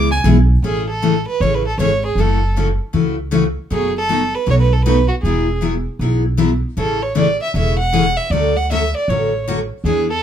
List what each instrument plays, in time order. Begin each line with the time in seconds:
Already playing: upright bass C#2, violin D6
0.11 violin G#5
0.24 upright bass B1, steel-string acoustic guitar E3 G#3 B3 E4 G#4
0.62 upright bass A1, steel-string acoustic guitar C#3 E3 A3 C#4 G#4, violin G#4
0.89 violin A4
1.02 steel-string acoustic guitar C#3 E3 A3 C#4 G#4
1.28 violin B4
1.40 upright bass A1, steel-string acoustic guitar C#3 E3 A3 C#4 G#4, violin C#5
1.55 violin B4
1.67 violin A4
1.78 upright bass G#1, steel-string acoustic guitar C#3 E3 A3 C#4 G#4, violin C#5
2.06 violin G#4
2.15 upright bass F#1, steel-string acoustic guitar C#3 E3 A3 C#4 F#4
2.20 violin A4
2.56 steel-string acoustic guitar C#3 E3 A3 C#4 F#4
2.93 upright bass C#2, steel-string acoustic guitar C#3 E3 A3 C#4 F#4
3.31 steel-string acoustic guitar C#3 E3 A3 C#4 F#4
3.70 upright bass F#1, steel-string acoustic guitar B2 F#3 A3 D#4 F#4, violin G#4
3.98 violin A4
4.09 steel-string acoustic guitar B2 F#3 A3 D#4 F#4
4.35 violin B4
4.46 upright bass B1, steel-string acoustic guitar B2 F#3 A3 D#4 F#4
4.50 violin C#5
4.60 violin B4
4.73 violin A4
4.85 steel-string acoustic guitar B2 F#3 A3 D#4 F#4, violin B4
5.08 violin F#4
5.22 upright bass E1, steel-string acoustic guitar E3 F#3 B3 E4, violin G#4
5.27 steel-string acoustic guitar G#4
5.61 steel-string acoustic guitar E3 F#3 B3 E4 G#4
5.99 upright bass B1, steel-string acoustic guitar E3 F#3 B3 E4 G#4
6.37 steel-string acoustic guitar E3 F#3 B3 E4 G#4
6.77 upright bass A1, steel-string acoustic guitar C#3 E3 A3 C#4 G#4, violin A4
7.03 violin C#5
7.15 steel-string acoustic guitar C#3 E3 A3 C#4 G#4, violin D5
7.43 violin E5
7.54 upright bass E1, steel-string acoustic guitar C#3 E3 A3 C#4 G#4, violin E5
7.79 violin F#5
7.93 steel-string acoustic guitar C#3 E3 A3 C#4 G#4
8.17 violin E5
8.30 upright bass D2, steel-string acoustic guitar D3 F#3 A3 C#4 F#4, violin D5
8.57 violin F#5
8.71 steel-string acoustic guitar D3 F#3 A3 C#4 F#4, violin E5
8.97 violin D5
9.08 upright bass A1, steel-string acoustic guitar D3 F#3 A3 C#4 F#4, violin C#5
9.48 steel-string acoustic guitar D3 F#3 A3 C#4 F#4
9.84 upright bass E2, steel-string acoustic guitar E3 B3 D4 G#4, violin G#4
10.10 violin A4